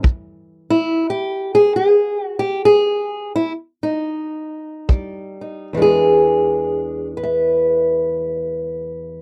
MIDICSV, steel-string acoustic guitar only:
0, 0, Header, 1, 2, 480
1, 0, Start_track
1, 0, Tempo, 641026
1, 31, Time_signature, 4, 2, 24, 8
1, 1472, Tempo, 693642
1, 2432, Tempo, 746269
1, 2912, Tempo, 791557
1, 3392, Tempo, 849858
1, 3872, Tempo, 882353
1, 5764, End_track
2, 0, Start_track
2, 0, Title_t, "Steel-string acoustic guitar"
2, 0, Program_c, 0, 25
2, 0, Note_on_c, 0, 52, 48
2, 23, Note_on_c, 0, 40, 73
2, 427, Note_off_c, 0, 40, 0
2, 528, Note_on_c, 0, 64, 101
2, 775, Note_off_c, 0, 52, 0
2, 813, Note_off_c, 0, 64, 0
2, 823, Note_on_c, 0, 67, 92
2, 1154, Note_off_c, 0, 67, 0
2, 1159, Note_on_c, 0, 68, 110
2, 1309, Note_off_c, 0, 68, 0
2, 1318, Note_on_c, 0, 68, 94
2, 1682, Note_off_c, 0, 68, 0
2, 1682, Note_on_c, 0, 66, 94
2, 1764, Note_off_c, 0, 66, 0
2, 1767, Note_on_c, 0, 67, 102
2, 1943, Note_off_c, 0, 67, 0
2, 1947, Note_on_c, 0, 68, 116
2, 2431, Note_off_c, 0, 68, 0
2, 2433, Note_on_c, 0, 64, 101
2, 2536, Note_off_c, 0, 64, 0
2, 2739, Note_on_c, 0, 63, 78
2, 3390, Note_on_c, 0, 41, 76
2, 3392, Note_on_c, 0, 55, 47
2, 3680, Note_off_c, 0, 63, 0
2, 3687, Note_on_c, 0, 63, 46
2, 3834, Note_off_c, 0, 41, 0
2, 3849, Note_off_c, 0, 63, 0
2, 3867, Note_on_c, 0, 40, 64
2, 3872, Note_off_c, 0, 55, 0
2, 3874, Note_on_c, 0, 52, 56
2, 3889, Note_on_c, 0, 56, 58
2, 3897, Note_on_c, 0, 62, 53
2, 3915, Note_on_c, 0, 68, 91
2, 4592, Note_off_c, 0, 68, 0
2, 4648, Note_off_c, 0, 62, 0
2, 4650, Note_on_c, 0, 71, 70
2, 4685, Note_on_c, 0, 76, 69
2, 5764, Note_off_c, 0, 40, 0
2, 5764, Note_off_c, 0, 52, 0
2, 5764, Note_off_c, 0, 56, 0
2, 5764, Note_off_c, 0, 71, 0
2, 5764, Note_off_c, 0, 76, 0
2, 5764, End_track
0, 0, End_of_file